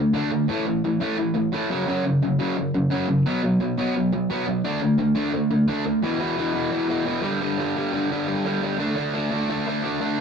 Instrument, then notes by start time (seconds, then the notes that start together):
distorted electric guitar
Already playing: D3 A3
0.14 D3 A3 D4
0.31 D3 A3
0.48 A2 E3 A3
0.66 A2 E3
0.84 A2 E3
1.00 A2 E3 A3
1.18 A2 E3
1.35 A2 E3
1.53 A2 E3 A3
1.70 F#2 C#3 F#3
1.87 F#2 C#3 F#3
2.05 F#2 C#3
2.22 F#2 C#3
2.39 F#2 C#3 F#3
2.57 F#2 C#3
2.74 F#2 C#3
2.90 F#2 C#3 F#3
3.08 F#2 C#3
3.26 B2 F#3 B3
3.43 B2 F#3
3.60 B2 F#3
3.77 B2 F#3 B3
3.95 B2 F#3
4.12 B2 F#3
4.30 B2 F#3 B3
4.47 B2 F#3
4.64 D3 A3 D4
4.82 D3 A3
4.98 D3 A3
5.15 D3 A3 D4
5.34 D3 A3
5.51 D3 A3
5.68 D3 A3 D4
5.85 D3 A3
6.02 E2 B2 E3
6.19 E2 B2 E3
6.37 E2 B2 E3
6.54 E2 B2 E3
6.71 E2 B2 E3
6.89 E2 B2 E3
7.05 E2 B2 E3
7.22 G2 D3 G3
7.41 G2 D3 G3
7.58 G2 D3 G3
7.76 G2 D3 G3
7.93 G2 D3 G3
8.11 G2 D3 G3
8.27 G2 D3 G3
8.45 G2 D3 G3
8.62 G2 D3 G3
8.78 D3 A3 D4
8.95 D3 A3 D4
9.14 D3 A3 D4
9.31 D3 A3 D4
9.49 D3 A3 D4
9.67 D3 A3 D4
9.83 D3 A3 D4
10.00 D3 A3 D4